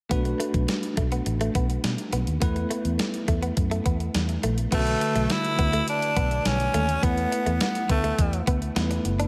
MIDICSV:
0, 0, Header, 1, 7, 480
1, 0, Start_track
1, 0, Key_signature, 2, "minor"
1, 0, Tempo, 576923
1, 89, Time_signature, 4, 2, 24, 8
1, 7718, End_track
2, 0, Start_track
2, 0, Title_t, "Tine electric piano"
2, 0, Program_c, 0, 4
2, 79, Note_on_c, 0, 57, 67
2, 86, Note_on_c, 0, 62, 62
2, 93, Note_on_c, 0, 66, 59
2, 99, Note_on_c, 0, 71, 71
2, 265, Control_c, 0, 64, 127
2, 1971, Note_off_c, 0, 57, 0
2, 1975, Note_off_c, 0, 62, 0
2, 1978, Note_off_c, 0, 66, 0
2, 1981, Note_off_c, 0, 71, 0
2, 1999, Note_on_c, 0, 57, 67
2, 2006, Note_on_c, 0, 59, 64
2, 2013, Note_on_c, 0, 64, 61
2, 2020, Control_c, 0, 64, 0
2, 2020, Note_on_c, 0, 71, 75
2, 2189, Control_c, 0, 64, 127
2, 3891, Note_off_c, 0, 57, 0
2, 3895, Note_off_c, 0, 59, 0
2, 3898, Note_off_c, 0, 64, 0
2, 3902, Note_off_c, 0, 71, 0
2, 3919, Note_on_c, 0, 57, 62
2, 3925, Note_on_c, 0, 61, 46
2, 3932, Note_on_c, 0, 66, 57
2, 3938, Note_on_c, 0, 71, 66
2, 3940, Control_c, 0, 64, 0
2, 3980, Note_on_c, 0, 50, 53
2, 3981, Note_off_c, 0, 61, 0
2, 4062, Control_c, 0, 64, 127
2, 5811, Note_off_c, 0, 57, 0
2, 5818, Note_off_c, 0, 66, 0
2, 5821, Note_off_c, 0, 71, 0
2, 5840, Note_on_c, 0, 57, 61
2, 5842, Note_off_c, 0, 50, 0
2, 5846, Note_on_c, 0, 59, 58
2, 5853, Note_on_c, 0, 64, 56
2, 5859, Note_on_c, 0, 71, 68
2, 5862, Control_c, 0, 64, 0
2, 6026, Control_c, 0, 64, 127
2, 7256, Note_off_c, 0, 57, 0
2, 7259, Note_off_c, 0, 59, 0
2, 7262, Note_off_c, 0, 64, 0
2, 7266, Note_off_c, 0, 71, 0
2, 7284, Note_on_c, 0, 57, 52
2, 7286, Note_on_c, 0, 59, 51
2, 7290, Note_on_c, 0, 64, 49
2, 7292, Note_on_c, 0, 71, 62
2, 7718, Note_off_c, 0, 57, 0
2, 7718, Note_off_c, 0, 59, 0
2, 7718, Note_off_c, 0, 64, 0
2, 7718, Note_off_c, 0, 71, 0
2, 7718, End_track
3, 0, Start_track
3, 0, Title_t, "Clean electric guitar"
3, 0, Program_c, 1, 27
3, 90, Note_on_c, 1, 59, 72
3, 184, Note_off_c, 1, 59, 0
3, 330, Note_on_c, 1, 57, 67
3, 424, Note_off_c, 1, 57, 0
3, 810, Note_on_c, 1, 57, 67
3, 904, Note_off_c, 1, 57, 0
3, 933, Note_on_c, 1, 59, 70
3, 1025, Note_off_c, 1, 59, 0
3, 1172, Note_on_c, 1, 57, 67
3, 1265, Note_off_c, 1, 57, 0
3, 1292, Note_on_c, 1, 59, 70
3, 1385, Note_off_c, 1, 59, 0
3, 1771, Note_on_c, 1, 59, 67
3, 1864, Note_off_c, 1, 59, 0
3, 2011, Note_on_c, 1, 59, 74
3, 2104, Note_off_c, 1, 59, 0
3, 2250, Note_on_c, 1, 57, 69
3, 2344, Note_off_c, 1, 57, 0
3, 2731, Note_on_c, 1, 57, 72
3, 2824, Note_off_c, 1, 57, 0
3, 2850, Note_on_c, 1, 59, 62
3, 2943, Note_off_c, 1, 59, 0
3, 3089, Note_on_c, 1, 57, 78
3, 3183, Note_off_c, 1, 57, 0
3, 3208, Note_on_c, 1, 59, 71
3, 3302, Note_off_c, 1, 59, 0
3, 3690, Note_on_c, 1, 57, 63
3, 3784, Note_off_c, 1, 57, 0
3, 3929, Note_on_c, 1, 59, 84
3, 4023, Note_off_c, 1, 59, 0
3, 4290, Note_on_c, 1, 57, 65
3, 4383, Note_off_c, 1, 57, 0
3, 4649, Note_on_c, 1, 59, 74
3, 4743, Note_off_c, 1, 59, 0
3, 4770, Note_on_c, 1, 57, 71
3, 4863, Note_off_c, 1, 57, 0
3, 5130, Note_on_c, 1, 59, 77
3, 5224, Note_off_c, 1, 59, 0
3, 5610, Note_on_c, 1, 57, 70
3, 5704, Note_off_c, 1, 57, 0
3, 5849, Note_on_c, 1, 59, 85
3, 5943, Note_off_c, 1, 59, 0
3, 6209, Note_on_c, 1, 57, 62
3, 6303, Note_off_c, 1, 57, 0
3, 6569, Note_on_c, 1, 59, 76
3, 6663, Note_off_c, 1, 59, 0
3, 6689, Note_on_c, 1, 57, 68
3, 6783, Note_off_c, 1, 57, 0
3, 7051, Note_on_c, 1, 59, 81
3, 7144, Note_off_c, 1, 59, 0
3, 7291, Note_on_c, 1, 59, 80
3, 7384, Note_off_c, 1, 59, 0
3, 7651, Note_on_c, 1, 62, 74
3, 7718, Note_off_c, 1, 62, 0
3, 7718, End_track
4, 0, Start_track
4, 0, Title_t, "Tenor saxophone"
4, 0, Program_c, 2, 66
4, 3943, Note_on_c, 2, 57, 97
4, 4424, Note_on_c, 2, 64, 93
4, 4436, Note_off_c, 2, 57, 0
4, 4896, Note_off_c, 2, 64, 0
4, 4902, Note_on_c, 2, 62, 93
4, 5381, Note_on_c, 2, 61, 88
4, 5393, Note_off_c, 2, 62, 0
4, 5859, Note_on_c, 2, 59, 94
4, 5872, Note_off_c, 2, 61, 0
4, 6334, Note_off_c, 2, 59, 0
4, 6340, Note_on_c, 2, 59, 79
4, 6558, Note_off_c, 2, 59, 0
4, 6578, Note_on_c, 2, 57, 77
4, 7021, Note_off_c, 2, 57, 0
4, 7718, End_track
5, 0, Start_track
5, 0, Title_t, "Fingered electric bass"
5, 0, Program_c, 3, 33
5, 91, Note_on_c, 3, 35, 86
5, 270, Note_off_c, 3, 35, 0
5, 450, Note_on_c, 3, 35, 89
5, 540, Note_off_c, 3, 35, 0
5, 809, Note_on_c, 3, 35, 77
5, 989, Note_off_c, 3, 35, 0
5, 1050, Note_on_c, 3, 33, 82
5, 1230, Note_off_c, 3, 33, 0
5, 1290, Note_on_c, 3, 35, 77
5, 1470, Note_off_c, 3, 35, 0
5, 1530, Note_on_c, 3, 47, 93
5, 1620, Note_off_c, 3, 47, 0
5, 1769, Note_on_c, 3, 35, 75
5, 1859, Note_off_c, 3, 35, 0
5, 1890, Note_on_c, 3, 39, 78
5, 1980, Note_off_c, 3, 39, 0
5, 2011, Note_on_c, 3, 40, 94
5, 2190, Note_off_c, 3, 40, 0
5, 2370, Note_on_c, 3, 40, 77
5, 2460, Note_off_c, 3, 40, 0
5, 2730, Note_on_c, 3, 40, 81
5, 2910, Note_off_c, 3, 40, 0
5, 2972, Note_on_c, 3, 42, 80
5, 3151, Note_off_c, 3, 42, 0
5, 3210, Note_on_c, 3, 40, 74
5, 3390, Note_off_c, 3, 40, 0
5, 3449, Note_on_c, 3, 40, 85
5, 3629, Note_off_c, 3, 40, 0
5, 3689, Note_on_c, 3, 34, 75
5, 3869, Note_off_c, 3, 34, 0
5, 3929, Note_on_c, 3, 35, 86
5, 4109, Note_off_c, 3, 35, 0
5, 4289, Note_on_c, 3, 35, 88
5, 4379, Note_off_c, 3, 35, 0
5, 4649, Note_on_c, 3, 38, 77
5, 4829, Note_off_c, 3, 38, 0
5, 5129, Note_on_c, 3, 35, 88
5, 5309, Note_off_c, 3, 35, 0
5, 5369, Note_on_c, 3, 35, 85
5, 5549, Note_off_c, 3, 35, 0
5, 5608, Note_on_c, 3, 39, 75
5, 5789, Note_off_c, 3, 39, 0
5, 5850, Note_on_c, 3, 40, 101
5, 6030, Note_off_c, 3, 40, 0
5, 6210, Note_on_c, 3, 40, 89
5, 6299, Note_off_c, 3, 40, 0
5, 6569, Note_on_c, 3, 38, 90
5, 6749, Note_off_c, 3, 38, 0
5, 6811, Note_on_c, 3, 40, 89
5, 6990, Note_off_c, 3, 40, 0
5, 7050, Note_on_c, 3, 38, 80
5, 7230, Note_off_c, 3, 38, 0
5, 7288, Note_on_c, 3, 40, 89
5, 7469, Note_off_c, 3, 40, 0
5, 7530, Note_on_c, 3, 30, 74
5, 7709, Note_off_c, 3, 30, 0
5, 7718, End_track
6, 0, Start_track
6, 0, Title_t, "Muted clean electric guitar strokes"
6, 210, Note_on_c, 9, 29, 35
6, 293, Note_off_c, 9, 29, 0
6, 571, Note_on_c, 9, 29, 38
6, 654, Note_off_c, 9, 29, 0
6, 1052, Note_on_c, 9, 29, 40
6, 1135, Note_off_c, 9, 29, 0
6, 2132, Note_on_c, 9, 29, 41
6, 2215, Note_off_c, 9, 29, 0
6, 2491, Note_on_c, 9, 29, 38
6, 2574, Note_off_c, 9, 29, 0
6, 2970, Note_on_c, 9, 29, 39
6, 3053, Note_off_c, 9, 29, 0
6, 4171, Note_on_c, 9, 29, 38
6, 4254, Note_off_c, 9, 29, 0
6, 4410, Note_on_c, 9, 29, 41
6, 4493, Note_off_c, 9, 29, 0
6, 6088, Note_on_c, 9, 29, 38
6, 6171, Note_off_c, 9, 29, 0
6, 6330, Note_on_c, 9, 29, 41
6, 6413, Note_off_c, 9, 29, 0
6, 7411, Note_on_c, 9, 29, 44
6, 7494, Note_off_c, 9, 29, 0
6, 7718, End_track
7, 0, Start_track
7, 0, Title_t, "Drums"
7, 91, Note_on_c, 9, 36, 102
7, 91, Note_on_c, 9, 42, 91
7, 174, Note_off_c, 9, 36, 0
7, 174, Note_off_c, 9, 42, 0
7, 210, Note_on_c, 9, 42, 45
7, 293, Note_off_c, 9, 42, 0
7, 334, Note_on_c, 9, 42, 69
7, 417, Note_off_c, 9, 42, 0
7, 450, Note_on_c, 9, 36, 75
7, 451, Note_on_c, 9, 42, 45
7, 533, Note_off_c, 9, 36, 0
7, 534, Note_off_c, 9, 42, 0
7, 568, Note_on_c, 9, 42, 73
7, 571, Note_on_c, 9, 38, 105
7, 652, Note_off_c, 9, 42, 0
7, 654, Note_off_c, 9, 38, 0
7, 690, Note_on_c, 9, 42, 48
7, 773, Note_off_c, 9, 42, 0
7, 808, Note_on_c, 9, 42, 70
7, 809, Note_on_c, 9, 36, 79
7, 891, Note_off_c, 9, 42, 0
7, 892, Note_off_c, 9, 36, 0
7, 929, Note_on_c, 9, 42, 45
7, 1012, Note_off_c, 9, 42, 0
7, 1049, Note_on_c, 9, 42, 84
7, 1132, Note_off_c, 9, 42, 0
7, 1171, Note_on_c, 9, 42, 40
7, 1254, Note_off_c, 9, 42, 0
7, 1290, Note_on_c, 9, 36, 89
7, 1290, Note_on_c, 9, 42, 71
7, 1373, Note_off_c, 9, 36, 0
7, 1373, Note_off_c, 9, 42, 0
7, 1411, Note_on_c, 9, 42, 44
7, 1495, Note_off_c, 9, 42, 0
7, 1529, Note_on_c, 9, 42, 72
7, 1531, Note_on_c, 9, 38, 102
7, 1613, Note_off_c, 9, 42, 0
7, 1614, Note_off_c, 9, 38, 0
7, 1650, Note_on_c, 9, 42, 48
7, 1733, Note_off_c, 9, 42, 0
7, 1768, Note_on_c, 9, 42, 65
7, 1851, Note_off_c, 9, 42, 0
7, 1890, Note_on_c, 9, 42, 44
7, 1973, Note_off_c, 9, 42, 0
7, 2010, Note_on_c, 9, 36, 102
7, 2010, Note_on_c, 9, 42, 94
7, 2093, Note_off_c, 9, 42, 0
7, 2094, Note_off_c, 9, 36, 0
7, 2130, Note_on_c, 9, 42, 44
7, 2213, Note_off_c, 9, 42, 0
7, 2252, Note_on_c, 9, 42, 70
7, 2336, Note_off_c, 9, 42, 0
7, 2371, Note_on_c, 9, 42, 48
7, 2454, Note_off_c, 9, 42, 0
7, 2489, Note_on_c, 9, 42, 78
7, 2492, Note_on_c, 9, 38, 104
7, 2572, Note_off_c, 9, 42, 0
7, 2575, Note_off_c, 9, 38, 0
7, 2611, Note_on_c, 9, 42, 47
7, 2694, Note_off_c, 9, 42, 0
7, 2729, Note_on_c, 9, 36, 82
7, 2729, Note_on_c, 9, 42, 67
7, 2812, Note_off_c, 9, 36, 0
7, 2812, Note_off_c, 9, 42, 0
7, 2850, Note_on_c, 9, 42, 48
7, 2933, Note_off_c, 9, 42, 0
7, 2969, Note_on_c, 9, 42, 81
7, 2971, Note_on_c, 9, 36, 87
7, 3052, Note_off_c, 9, 42, 0
7, 3054, Note_off_c, 9, 36, 0
7, 3090, Note_on_c, 9, 42, 41
7, 3173, Note_off_c, 9, 42, 0
7, 3209, Note_on_c, 9, 42, 71
7, 3210, Note_on_c, 9, 36, 84
7, 3292, Note_off_c, 9, 42, 0
7, 3293, Note_off_c, 9, 36, 0
7, 3330, Note_on_c, 9, 42, 44
7, 3413, Note_off_c, 9, 42, 0
7, 3448, Note_on_c, 9, 42, 72
7, 3450, Note_on_c, 9, 38, 100
7, 3531, Note_off_c, 9, 42, 0
7, 3533, Note_off_c, 9, 38, 0
7, 3568, Note_on_c, 9, 42, 49
7, 3651, Note_off_c, 9, 42, 0
7, 3688, Note_on_c, 9, 42, 68
7, 3771, Note_off_c, 9, 42, 0
7, 3808, Note_on_c, 9, 42, 44
7, 3891, Note_off_c, 9, 42, 0
7, 3927, Note_on_c, 9, 42, 98
7, 3928, Note_on_c, 9, 49, 82
7, 3930, Note_on_c, 9, 36, 101
7, 4011, Note_off_c, 9, 42, 0
7, 4011, Note_off_c, 9, 49, 0
7, 4013, Note_off_c, 9, 36, 0
7, 4049, Note_on_c, 9, 42, 45
7, 4133, Note_off_c, 9, 42, 0
7, 4171, Note_on_c, 9, 42, 72
7, 4255, Note_off_c, 9, 42, 0
7, 4289, Note_on_c, 9, 42, 47
7, 4372, Note_off_c, 9, 42, 0
7, 4407, Note_on_c, 9, 42, 77
7, 4410, Note_on_c, 9, 38, 104
7, 4490, Note_off_c, 9, 42, 0
7, 4493, Note_off_c, 9, 38, 0
7, 4530, Note_on_c, 9, 42, 49
7, 4613, Note_off_c, 9, 42, 0
7, 4648, Note_on_c, 9, 42, 73
7, 4649, Note_on_c, 9, 36, 80
7, 4731, Note_off_c, 9, 42, 0
7, 4732, Note_off_c, 9, 36, 0
7, 4769, Note_on_c, 9, 42, 51
7, 4852, Note_off_c, 9, 42, 0
7, 4889, Note_on_c, 9, 42, 83
7, 4972, Note_off_c, 9, 42, 0
7, 5011, Note_on_c, 9, 42, 39
7, 5094, Note_off_c, 9, 42, 0
7, 5129, Note_on_c, 9, 36, 86
7, 5129, Note_on_c, 9, 42, 74
7, 5212, Note_off_c, 9, 42, 0
7, 5213, Note_off_c, 9, 36, 0
7, 5251, Note_on_c, 9, 42, 44
7, 5335, Note_off_c, 9, 42, 0
7, 5370, Note_on_c, 9, 42, 74
7, 5371, Note_on_c, 9, 38, 101
7, 5453, Note_off_c, 9, 42, 0
7, 5454, Note_off_c, 9, 38, 0
7, 5491, Note_on_c, 9, 42, 48
7, 5574, Note_off_c, 9, 42, 0
7, 5609, Note_on_c, 9, 42, 70
7, 5692, Note_off_c, 9, 42, 0
7, 5730, Note_on_c, 9, 42, 47
7, 5814, Note_off_c, 9, 42, 0
7, 5850, Note_on_c, 9, 36, 110
7, 5850, Note_on_c, 9, 42, 98
7, 5933, Note_off_c, 9, 36, 0
7, 5933, Note_off_c, 9, 42, 0
7, 5970, Note_on_c, 9, 42, 47
7, 6053, Note_off_c, 9, 42, 0
7, 6093, Note_on_c, 9, 42, 69
7, 6177, Note_off_c, 9, 42, 0
7, 6211, Note_on_c, 9, 42, 50
7, 6294, Note_off_c, 9, 42, 0
7, 6328, Note_on_c, 9, 42, 78
7, 6331, Note_on_c, 9, 38, 107
7, 6411, Note_off_c, 9, 42, 0
7, 6414, Note_off_c, 9, 38, 0
7, 6450, Note_on_c, 9, 42, 49
7, 6533, Note_off_c, 9, 42, 0
7, 6568, Note_on_c, 9, 42, 72
7, 6569, Note_on_c, 9, 36, 82
7, 6651, Note_off_c, 9, 42, 0
7, 6652, Note_off_c, 9, 36, 0
7, 6690, Note_on_c, 9, 42, 50
7, 6773, Note_off_c, 9, 42, 0
7, 6810, Note_on_c, 9, 42, 85
7, 6811, Note_on_c, 9, 36, 91
7, 6893, Note_off_c, 9, 42, 0
7, 6894, Note_off_c, 9, 36, 0
7, 6931, Note_on_c, 9, 42, 42
7, 7015, Note_off_c, 9, 42, 0
7, 7050, Note_on_c, 9, 36, 90
7, 7051, Note_on_c, 9, 42, 78
7, 7133, Note_off_c, 9, 36, 0
7, 7134, Note_off_c, 9, 42, 0
7, 7171, Note_on_c, 9, 42, 43
7, 7254, Note_off_c, 9, 42, 0
7, 7290, Note_on_c, 9, 42, 79
7, 7291, Note_on_c, 9, 38, 107
7, 7373, Note_off_c, 9, 42, 0
7, 7375, Note_off_c, 9, 38, 0
7, 7410, Note_on_c, 9, 42, 51
7, 7493, Note_off_c, 9, 42, 0
7, 7530, Note_on_c, 9, 42, 69
7, 7613, Note_off_c, 9, 42, 0
7, 7650, Note_on_c, 9, 42, 46
7, 7718, Note_off_c, 9, 42, 0
7, 7718, End_track
0, 0, End_of_file